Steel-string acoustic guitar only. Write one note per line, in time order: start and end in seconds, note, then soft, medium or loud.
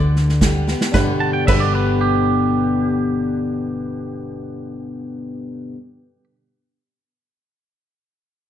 0.00 0.40 D3 medium
0.41 0.66 D3 medium
0.41 0.67 G3 medium
0.41 0.67 B3 medium
0.41 0.66 G4 medium
0.67 0.94 B3 soft
0.67 0.93 G4 medium
0.93 1.47 G2 medium
0.93 1.48 B2 medium
0.93 1.49 D3 medium
0.93 1.49 G3 medium
0.93 1.50 B3 medium
0.97 1.51 G4 medium
1.48 5.74 G2 medium
1.48 5.75 B2 medium
1.48 5.76 D3 medium
1.48 5.77 G3 medium
1.48 5.77 B3 medium
1.48 5.78 G4 medium